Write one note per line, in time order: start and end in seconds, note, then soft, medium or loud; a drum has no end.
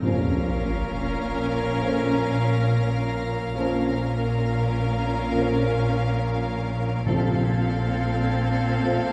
0.02 3.51 A#1 soft
0.02 0.37 F2 soft
0.02 1.31 A#2 medium
0.02 3.51 A#2 medium
0.02 0.37 F3 medium
0.02 0.36 A#3 medium
0.02 3.51 C#4 medium
0.02 0.36 C#4 soft
0.02 3.52 A#4 medium
0.02 3.51 F5 medium
0.02 6.59 F6 soft
0.02 5.72 A#6 soft
0.02 sub drop medium
1.79 2.12 F2 soft
1.79 2.12 F3 soft
1.79 2.13 A#3 soft
1.79 2.13 C#4 soft
3.54 7.03 A#1 soft
3.54 3.87 F2 soft
3.54 7.03 A#2 medium
3.54 3.88 F3 medium
3.54 3.88 A#3 soft
3.54 7.03 C#4 soft
3.54 3.88 C#4 medium
3.54 7.03 A#4 medium
3.54 7.02 F5 medium
5.31 5.65 F2 soft
5.31 5.65 F3 soft
5.31 5.64 A#3 medium
5.31 5.64 C#4 soft
7.05 9.13 A#1 soft
7.05 7.40 F2 medium
7.05 8.35 A#2 medium
7.05 9.13 A#2 medium
7.05 7.40 F3 medium
7.05 7.40 A3 soft
7.05 9.13 C4 medium
7.05 7.40 C4 medium
7.05 9.13 A4 medium
7.05 9.13 F5 medium
7.05 9.13 F6 soft
7.05 9.13 G#6 soft
7.95 9.13 A6 soft
8.82 9.13 F2 soft
8.82 9.13 F3 medium
8.82 9.13 A3 soft
8.82 9.13 C4 medium